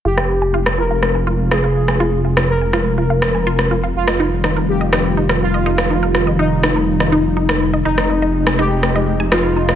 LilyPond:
<<
  \new Staff \with { instrumentName = "Synth arpeggio sound" } { \time 4/4 \key f \minor \tempo 4 = 123 f'16 f''16 r16 aes''16 f'16 r16 f'16 f''16 r16 aes''16 f'16 r16 f'16 f''16 r16 aes''16 | f'16 r16 f'16 f''16 r16 aes''16 f'16 r16 f'16 f''16 r16 aes''16 f'16 r16 f'16 f''16 | r16 ees''16 ees'16 r16 ees'16 bes'16 r16 ees''16 ees'16 r16 ees'16 bes'16 r16 ees''16 ees'16 r16 | ees'16 bes'16 r16 ees''16 ees'16 r16 ees'16 bes'16 r16 ees''16 ees'16 r16 ees'16 bes'16 r16 ees''16 |
ees'16 r16 ees'16 ees''16 r16 aes''16 ees'16 r16 ees'16 ees''16 r16 aes''16 ees'16 r16 ees'16 ees''16 | }
  \new Staff \with { instrumentName = "Analog polysynth" } { \time 4/4 \key f \minor g'4. bes'4. aes'4~ | aes'4 bes'2. | f'4. g'4. f'4~ | f'4 ees'2. |
ees'4. g'4. f'4 | }
  \new Staff \with { instrumentName = "Analog synth pad" } { \clef bass \time 4/4 \key f \minor <c aes f'>1~ | <c aes f'>1 | <ees g f'>1~ | <ees g f'>1 |
<c aes ees'>1 | }
  \new Staff \with { instrumentName = "Detuned saw bass" } { \clef bass \time 4/4 \key f \minor f,,1~ | f,,1 | f,,1~ | f,,1 |
f,,1 | }
  \new DrumStaff \with { instrumentName = "Drums" } \drummode { \time 4/4 r16 ss8. r16 ss8. ss4 ss8. ss16 | r8. ss16 r8 ss8 r8 ss8 r16 ss8. | r16 ss8. ss4 ss8. ss16 r8. ss16 | r8 ss8 r8 ss8 r16 ss8. r16 ss8. |
r16 ss8. r16 ss8. ss4 ss8. ss16 | }
>>